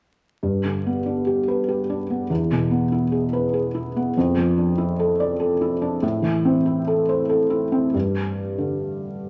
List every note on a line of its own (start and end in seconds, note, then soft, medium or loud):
0.43 2.26 G2 soft
0.64 0.97 D3 soft
0.86 1.19 B3 soft
1.06 1.39 D4 soft
1.27 1.59 G4 soft
1.48 1.80 B4 soft
1.68 2.01 G4 soft
1.89 2.22 D4 soft
2.10 2.30 B3 soft
2.30 4.12 E2 soft
2.51 2.84 B2 soft
2.71 3.04 B3 soft
2.92 3.25 E4 soft
3.12 3.45 G#4 soft
3.33 3.66 B4 soft
3.53 3.87 G#4 soft
3.75 4.07 E4 soft
3.96 4.16 B3 soft
4.17 5.99 F2 soft
4.37 4.70 F3 soft
4.58 4.91 D4 soft
4.78 5.11 E4 soft
4.99 5.32 A4 soft
5.20 5.53 D5 soft
5.40 5.73 A4 soft
5.61 5.94 E4 soft
5.82 6.02 D4 soft
6.02 7.90 A2 soft
6.22 6.56 E3 soft
6.45 6.78 C4 soft
6.65 6.99 E4 soft
6.87 7.21 A4 soft
7.09 7.43 C5 soft
7.29 7.64 A4 soft
7.50 7.85 E4 soft
7.72 7.94 C4 soft
7.94 9.29 G2 soft
8.58 9.29 D3 soft